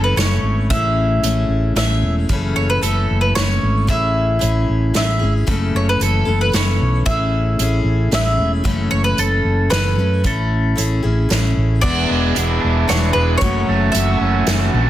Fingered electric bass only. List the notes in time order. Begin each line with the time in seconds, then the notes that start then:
Already playing: F#1
0.17 F#1
0.42 G#1
0.71 A1
1.23 A1
1.48 A1
1.76 A1
2.03 E1
2.30 F#1
2.56 F#1
2.82 F#1
3.11 F#1
3.37 F#1
3.63 G#1
3.88 A1
4.42 A1
4.69 A1
4.96 A1
5.22 G#1
5.47 F#1
5.74 F#1
6.00 F#1
6.27 F#1
6.54 F#1
6.81 B1
7.06 A1
7.59 A1
7.84 A1
8.12 A1
8.38 E1
8.65 F#1
8.92 F#1
9.18 F#1
9.45 F#1
9.72 F#1
9.98 F#2
10.25 A1
10.78 A1
11.04 A1
11.30 A1
11.57 A1
12.11 E1
12.37 E1
12.64 E1
12.90 E1
13.15 E1
13.42 F#1
13.68 F#1
13.94 F#1
14.20 F#1
14.47 F#1
14.74 A#1